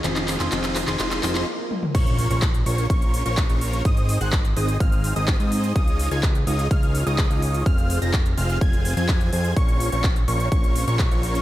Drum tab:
CC |----------------|x---------------|----------------|----------------|
HH |xxoxxxoxxxox----|xxoxxxoxxxoxxxox|xxoxxxoxxxoxxxox|xxoxxxoxxxoxxxox|
CP |xxxxxxxxxxxx----|----x-------x---|----x-------x---|----x-------x---|
T1 |--------------o-|----------------|----------------|----------------|
T2 |---------------o|----------------|----------------|----------------|
BD |----------------|o---o---o---o---|o---o---o---o---|o---o---o---o---|

CC |----------------|----------------|
HH |xxoxxxoxxxoxxxox|xxoxxxoxxxoxxxox|
CP |----x-------x---|----x-------x---|
T1 |----------------|----------------|
T2 |----------------|----------------|
BD |o---o---o---o---|o---o---o---o---|